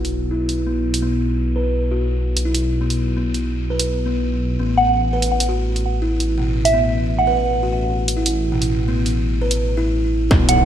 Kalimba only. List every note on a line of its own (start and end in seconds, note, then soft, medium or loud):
0.31 0.48 E4 medium
0.67 1.01 B3 medium
1.02 1.19 B3 medium
1.56 1.73 B4 medium
1.91 2.02 F#4 medium
2.45 2.62 E4 medium
2.81 3.15 B3 medium
3.17 3.34 B3 medium
3.70 3.87 B4 medium
4.06 4.22 B3 medium
4.59 4.77 B3 medium
5.13 5.30 B4 medium
5.49 5.59 F#4 medium
6.02 6.19 E4 medium
6.38 6.55 B2 loud
6.74 6.91 B3 medium
7.27 7.44 B4 medium
7.63 7.74 F#4 medium
8.17 8.34 E4 medium
8.52 8.69 B2 loud
8.88 9.05 B3 medium
9.42 9.59 B4 medium
9.77 9.94 E4 loud
10.31 10.48 B3 medium